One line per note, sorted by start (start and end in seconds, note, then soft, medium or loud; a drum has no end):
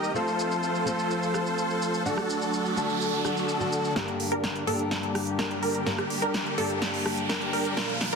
0.00 0.12 D#3 medium
0.00 0.12 G3 medium
0.00 0.11 A#3 medium
0.00 0.12 A#3 medium
0.00 0.12 D#4 medium
0.00 0.12 G4 medium
0.00 0.13 G4 medium
0.00 0.11 A#4 medium
0.00 0.12 A#4 medium
0.00 0.13 A#4 medium
0.00 0.12 D#5 medium
0.00 shaker soft
0.14 2.04 F3 medium
0.14 0.83 A3 medium
0.14 3.92 A3 medium
0.14 0.84 C4 medium
0.14 2.04 C4 medium
0.14 2.03 F4 medium
0.14 0.84 F4 medium
0.14 2.03 A4 medium
0.14 3.92 A4 medium
0.14 0.84 A4 medium
0.14 2.03 C5 medium
0.14 shaker soft
0.28 shaker soft
0.39 shaker medium
0.51 shaker soft
0.63 shaker soft
0.75 shaker soft
0.85 2.02 A3 medium
0.85 2.03 C4 medium
0.85 2.03 F4 medium
0.85 2.03 A4 medium
0.85 shaker medium
0.99 shaker soft
1.11 shaker soft
1.23 shaker soft
1.34 cross-stick medium
1.34 shaker medium
1.46 shaker soft
1.58 shaker soft
1.70 shaker soft
1.82 shaker medium
1.94 shaker soft
2.05 2.16 D3 medium
2.05 3.94 F#3 medium
2.05 2.16 A3 medium
2.05 2.16 D4 medium
2.05 3.94 D4 medium
2.05 3.93 D4 medium
2.05 3.93 F#4 medium
2.05 2.16 F#4 medium
2.05 3.93 A4 medium
2.05 2.16 A4 loud
2.05 noise sweep medium
2.05 shaker soft
2.18 cross-stick medium
2.18 shaker soft
2.30 shaker medium
2.42 shaker soft
2.54 shaker soft
2.65 shaker soft
2.76 3.22 D3 medium
2.76 3.22 A3 medium
2.76 3.22 D4 medium
2.76 3.22 F#4 medium
2.76 3.23 A4 medium
2.76 shaker medium
2.89 shaker soft
3.01 shaker soft
3.13 shaker soft
3.24 3.57 D3 medium
3.24 3.57 A3 medium
3.24 3.58 D4 medium
3.24 3.58 F#4 medium
3.24 3.58 D5 medium
3.24 cross-stick medium
3.24 shaker medium
3.37 shaker soft
3.49 shaker soft
3.60 3.93 D3 medium
3.60 3.93 A3 medium
3.60 3.93 D4 medium
3.60 3.93 F#4 medium
3.60 3.94 A4 loud
3.60 shaker soft
3.73 shaker medium
3.85 shaker soft
3.95 4.64 G2 medium
3.95 8.15 D3 medium
3.95 7.73 G3 medium
3.95 4.64 A#3 medium
3.95 8.15 A#3 medium
3.95 4.11 D4 medium
3.95 4.65 D4 medium
3.95 7.73 G4 medium
3.95 4.11 G4 medium
3.95 4.65 G4 medium
3.95 4.11 A#4 medium
3.95 4.65 A#4 medium
3.95 kick loud
3.95 snare soft
3.95 closed hi-hat medium
3.95 riser medium
4.08 closed hi-hat soft
4.20 4.38 D2 loud
4.20 open hi-hat loud
4.32 4.65 D4 medium
4.32 4.65 G4 medium
4.32 4.65 A#4 loud
4.32 closed hi-hat medium
4.44 kick loud
4.44 snare soft
4.44 closed hi-hat medium
4.55 closed hi-hat soft
4.66 5.83 G2 medium
4.66 5.83 A#3 medium
4.66 5.84 D4 medium
4.66 4.82 D4 loud
4.66 4.82 G4 medium
4.66 5.84 G4 medium
4.66 4.82 A4 loud
4.66 5.84 A#4 medium
4.66 open hi-hat loud
4.79 closed hi-hat medium
4.91 kick loud
4.91 snare medium
4.91 closed hi-hat medium
5.03 closed hi-hat soft
5.15 5.33 G1 medium
5.15 cross-stick medium
5.15 open hi-hat loud
5.27 closed hi-hat soft
5.39 5.60 D4 medium
5.39 5.60 G4 medium
5.39 5.60 A#4 medium
5.39 kick loud
5.39 snare medium
5.39 closed hi-hat medium
5.51 closed hi-hat soft
5.63 5.83 D4 medium
5.63 5.83 G4 medium
5.63 5.83 A#4 medium
5.63 open hi-hat loud
5.75 closed hi-hat medium
5.86 5.97 G2 medium
5.86 5.97 A#3 medium
5.86 5.97 D4 medium
5.86 6.02 D4 medium
5.86 6.02 G4 medium
5.86 5.97 G4 medium
5.86 6.01 A#4 medium
5.86 6.02 A#4 medium
5.86 5.97 A#4 loud
5.86 kick loud
5.86 snare medium
5.86 closed hi-hat medium
5.98 cross-stick medium
5.98 closed hi-hat soft
6.10 6.29 D2 loud
6.10 open hi-hat loud
6.22 6.55 D4 medium
6.22 6.55 G4 medium
6.22 6.55 A#4 loud
6.22 closed hi-hat medium
6.34 kick loud
6.34 snare medium
6.34 closed hi-hat soft
6.46 closed hi-hat soft
6.57 7.74 G2 medium
6.57 7.74 A#3 medium
6.57 7.74 D4 medium
6.57 6.73 D4 loud
6.57 6.73 G4 medium
6.57 7.75 G4 medium
6.57 6.73 A4 loud
6.57 7.75 A#4 medium
6.57 open hi-hat loud
6.70 closed hi-hat medium
6.82 kick loud
6.82 snare medium
6.82 closed hi-hat medium
6.94 open hi-hat medium
7.06 cross-stick medium
7.06 open hi-hat loud
7.18 closed hi-hat medium
7.29 7.51 D4 medium
7.29 7.51 G4 medium
7.29 7.50 A#4 medium
7.29 7.51 A#4 medium
7.29 kick loud
7.29 snare medium
7.29 closed hi-hat medium
7.41 closed hi-hat soft
7.53 7.74 D4 medium
7.53 7.74 G4 medium
7.53 7.73 A#4 medium
7.53 7.74 A#4 medium
7.53 open hi-hat loud
7.65 closed hi-hat soft
7.76 8.15 A#2 medium
7.76 8.15 F3 medium
7.76 8.15 A#3 medium
7.76 7.92 D4 medium
7.76 8.15 D4 medium
7.76 8.15 F4 medium
7.76 7.92 F4 medium
7.76 8.15 F4 medium
7.76 7.92 A#4 medium
7.76 8.15 A#4 medium
7.76 kick loud
7.76 snare medium
7.76 closed hi-hat soft
7.89 closed hi-hat soft
8.01 8.15 F2 loud
8.01 snare medium
8.01 open hi-hat loud